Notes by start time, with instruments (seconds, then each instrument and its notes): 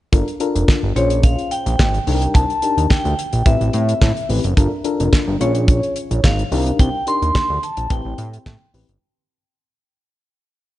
0.12 analog synth bass G1, fm electric piano D4 F4 A4 A#4, kick, closed hi-hat
0.28 closed hi-hat
0.40 fm electric piano D4 F4 A4 A#4, closed hi-hat
0.55 analog synth bass F1, closed hi-hat
0.68 kick, snare, clap
0.83 analog synth bass G1
0.96 analog synth bass A#1, fm electric piano C#4 F4 G#4 C5, vibraphone C#5, closed hi-hat
1.10 closed hi-hat
1.23 vibraphone F5, kick, closed hi-hat
1.39 closed hi-hat
1.51 vibraphone G5, closed hi-hat
1.66 analog synth bass A#1, closed hi-hat
1.79 analog synth bass G#1, kick, snare, clap
1.94 closed hi-hat
2.07 analog synth bass C2, fm electric piano D4 D#4 G4 A4, open hi-hat
2.14 fm electric piano A#4
2.22 closed hi-hat
2.34 analog synth bass C2, vibraphone A5, kick, closed hi-hat
2.50 closed hi-hat
2.62 fm electric piano D4 D#4 G4 A#4, closed hi-hat
2.77 analog synth bass D#2, closed hi-hat
2.90 vibraphone G5, kick, snare, clap
3.05 analog synth bass D2, closed hi-hat
3.19 closed hi-hat
3.33 analog synth bass A#1, closed hi-hat
3.46 analog synth bass A1, fm electric piano C4 E4 G4 B4, vibraphone E5, kick, closed hi-hat
3.61 analog synth bass A1, closed hi-hat
3.73 analog synth bass A2, closed hi-hat
3.89 closed hi-hat
4.02 analog synth bass A2, kick, snare, clap
4.17 closed hi-hat
4.29 analog synth bass A1, fm electric piano C4 E4 G4 B4, open hi-hat
4.44 analog synth bass F#1, closed hi-hat
4.57 analog synth bass G1, fm electric piano D4 F4 A4 A#4, kick, closed hi-hat
4.84 fm electric piano D4 F4 A4 A#4, closed hi-hat
5.00 analog synth bass F1, closed hi-hat
5.13 kick, snare, clap
5.28 analog synth bass G1
5.40 analog synth bass A#1, fm electric piano C#4 F4 G#4 C#5, vibraphone C#5, closed hi-hat
5.55 closed hi-hat
5.68 kick, closed hi-hat
5.83 closed hi-hat
5.96 closed hi-hat
6.11 analog synth bass A#1, closed hi-hat
6.24 analog synth bass G#1, vibraphone F5, kick, snare, clap
6.39 closed hi-hat
6.52 analog synth bass C2, fm electric piano D4 D#4 G4 A#4, open hi-hat
6.66 closed hi-hat
6.79 analog synth bass C2, vibraphone G5, kick, closed hi-hat
7.07 fm electric piano D4 D#4 G4 A#4, vibraphone C6, closed hi-hat
7.22 analog synth bass D#2, closed hi-hat
7.35 kick, snare, clap
7.50 analog synth bass D2
7.63 vibraphone A5, closed hi-hat
7.77 analog synth bass A#1, closed hi-hat
7.90 analog synth bass A1, fm electric piano C4 E4 G4 B4, vibraphone G5, kick, closed hi-hat
8.05 analog synth bass A1
8.18 analog synth bass A2, closed hi-hat
8.33 closed hi-hat
8.46 analog synth bass A2, kick, snare, clap
8.74 analog synth bass A1, fm electric piano C4 E4 G4 B4, open hi-hat
8.89 analog synth bass G1, closed hi-hat